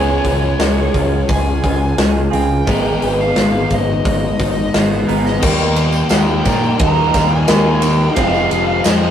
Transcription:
Already playing: C#2 C#3 G#3 C#4 F4 G#4 C#5
0.25 C#2, kick, open hi-hat
0.59 C#2 G#4, snare, open hi-hat
0.94 C#2 F4, kick, open hi-hat
1.28 C#2 G#4 G#5, kick, open hi-hat
1.64 C#2 F4, kick, open hi-hat
1.98 C#2 G#3, snare, open hi-hat
2.30 C#2 C#3 G#3 C4 F4 G#4 G5, open hi-hat
2.67 G#1 G#2 D#3 G#3 B3 D#4 G#4 A#4, kick, open hi-hat
3.02 G#1 B3, open hi-hat
3.21 F5
3.36 G#1, snare, open hi-hat
3.70 G#1 D#4 D#5, kick, open hi-hat
4.05 G#1 D#5, kick, open hi-hat
4.39 G#1 D#4, kick, open hi-hat
4.74 G#1 G#3 D#5, snare, open hi-hat
4.79 B4
5.08 G#1 G#2 D#3 G#3 B3 D#4 A#4, open hi-hat
5.26 snare
5.40 D#2 D#3 G3 A#3 D#4 G4 G5, kick, crash, tambourine
5.57 tambourine
5.75 A#3, ride, tambourine
5.92 tambourine
6.09 D#2 G3 A#3 D#4 G4 G5, snare, ride, tambourine
6.45 A#2 A#3 D#4 G4, kick, ride, tambourine
6.64 tambourine
6.79 D#2 D#3 G3 A#3 D#4 G4 A#5, kick, ride, tambourine
7.12 D#2 D#3 G3 A#3 D#4, kick, snare, ride, tambourine
7.30 G#5
7.47 D#2 D#3 G3 A#3 D#4 G4, snare, ride, tambourine
7.80 D#4 G5, ride, tambourine
8.15 F1 F3 G#3 C4 F5, kick, ride, tambourine
8.19 F4 G#4
8.34 tambourine
8.51 F1 F3, ride, tambourine
8.84 F2 F3 C4 F4 D#5, snare, ride, tambourine
8.89 G#4

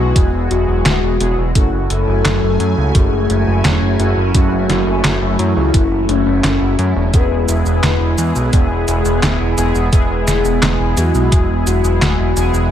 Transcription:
Already playing: G#3 B3 E4 F#4 G#4
0.00 B1
0.16 E1, kick, closed hi-hat
0.33 E1
0.51 E1 F#4, closed hi-hat
0.68 E1
0.86 D1, snare, clap, closed hi-hat
1.03 E1
1.20 E1 G#3 B3 E4 G#4, closed hi-hat
1.38 E1
1.55 F#1 F#3 A3 C#4 E4 F#4 A4 G#5, kick, closed hi-hat
1.73 F#1
1.90 F#1, closed hi-hat
2.08 F#1
2.25 F#1, snare, clap, closed hi-hat
2.43 F#1
2.60 F#2, closed hi-hat
2.77 C#2
2.95 F#1 G#4, kick, closed hi-hat
3.12 F#1
3.30 F#1, closed hi-hat
3.47 F#1
3.65 E1, snare, clap, closed hi-hat
3.82 F#1
3.99 F#1 A3 C#4 E4 F#4, closed hi-hat
4.17 F#1
4.34 F#1 A3 C#4 E4 F#4, kick, closed hi-hat
4.52 F#1
4.69 F#1, snare, closed hi-hat
4.87 F#1
5.04 F#1, snare, clap, closed hi-hat
5.22 F#1
5.39 F#2 E4, closed hi-hat
5.56 C#2
5.74 F#1, kick, closed hi-hat
5.91 F#1
6.09 F#1 C#4, closed hi-hat
6.26 F#1
6.44 F#1, snare, clap, closed hi-hat
6.61 F#1
6.79 F#2, closed hi-hat
6.96 E1
7.13 E1 G#3 B3 E4 G#4 B4, kick, closed hi-hat, shaker
7.31 E1
7.48 E1, closed hi-hat, shaker
7.66 E1, shaker
7.83 E1, snare, clap, closed hi-hat, shaker
8.01 E1
8.18 E2, closed hi-hat, shaker
8.36 B1, shaker
8.53 E1 G#4, kick, closed hi-hat, shaker
8.71 E1
8.88 E1, closed hi-hat, shaker
9.05 E1, shaker
9.23 D1, snare, clap, closed hi-hat, shaker
9.40 E1
9.58 E1 G#3 B3 E4 G#4, closed hi-hat, shaker
9.75 E1, shaker
9.92 E1 G#3 B3 E4 G#4, kick, closed hi-hat, shaker
10.10 E1
10.27 E1, snare, closed hi-hat, shaker
10.45 E1, shaker
10.62 E1, snare, clap, closed hi-hat, shaker
10.80 E1
10.97 E2 F#4, closed hi-hat, shaker
11.15 B1, shaker
11.32 E1, kick, closed hi-hat, shaker
11.49 E1
11.67 E1 F#4, closed hi-hat, shaker
11.84 E1, shaker
12.02 D1, snare, clap, closed hi-hat, shaker
12.19 E1
12.37 E1 G#3 B3 E4 G#4, closed hi-hat, shaker
12.54 E1, shaker

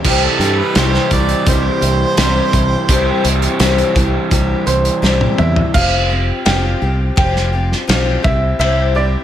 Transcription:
0.04 C2 C3 E3 G3 C4 E4 G4, kick, crash
0.23 A4
0.39 G2 E4 G4, snare, closed hi-hat
0.44 C4
0.59 B4
0.75 C2 C3 G3 C4 E4 G4 C5, snare, closed hi-hat
0.94 snare
1.11 C2 C4 E4 G4 D5, kick, closed hi-hat
1.29 closed hi-hat
1.46 C2 G3 C4 E4 G4 C5, kick, closed hi-hat
1.81 C2 C4 E4 G4, closed hi-hat
2.17 C2 C3 G3 C4 E4 G4, snare, closed hi-hat
2.53 C2 C4 E4 G4, kick, closed hi-hat
2.88 C2 C3 E3 G3 C4 E4 G4, kick, closed hi-hat
3.24 C2 C4 E4 G4, closed hi-hat
3.42 closed hi-hat
3.59 C2 C3 G3 C4 E4 G4, snare, closed hi-hat
3.78 closed hi-hat
3.95 C2 C4 E4 G4, kick, closed hi-hat
4.31 C2 G3 C4 E4 G4, kick, closed hi-hat
4.66 C2 C4 E4 G4 C5, closed hi-hat
4.85 closed hi-hat
5.02 C2 C3 G3 C4 E4 G4, snare
5.21 high tom
5.38 E2 C4 E4 G4 E5, mid tom
5.56 floor tom
5.74 F1 F3 C4 F4 G4 F5, kick, crash
6.09 C4 F4 G4
6.45 F1 F3 C4 F4 G4 G5, snare, ride bell
6.82 C2 C4 F4 G4
7.16 F1 F3 C4 F4 G4 G5, kick, ride bell
7.36 snare
7.53 C4 F4 G4
7.72 snare
7.88 B1 F3 C4 F4 G4, snare, ride bell
8.23 C2 C4 E4 G4 E5, kick
8.59 C2 C3 G3 C4 E4 G4 E5, ride bell
8.95 C4 E4 G4 D5

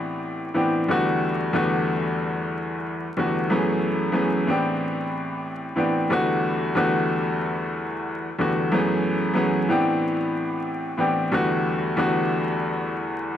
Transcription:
Already playing: A2 E3 B3 C4 D4 G4
0.54 A2 E3 B3 C4 D4 G4
0.88 E2 D3 G3 A3 B3 F#4
1.53 E2 D3 G3 A3 B3 F#4
3.17 E2 D3 G3 A3 B3 F#4
3.50 F#2 E3 A3 B3 C#4 G#4
4.12 F#2 E3 A3 B3 C#4 G#4
4.47 A2 E3 B3 C4 D4 G4
5.76 A2 E3 B3 C4 D4 G4
6.10 E2 D3 G3 A3 B3 F#4
6.75 E2 D3 G3 A3 B3 F#4
8.39 E2 D3 G3 A3 B3 F#4
8.72 F#2 E3 A3 B3 C#4 G#4
9.34 F#2 E3 A3 B3 C#4 G#4
9.69 A2 E3 B3 C4 D4 G4
10.97 A2 E3 B3 C4 D4 G4
11.32 E2 D3 G3 A3 B3 F#4
11.97 E2 D3 G3 A3 B3 F#4

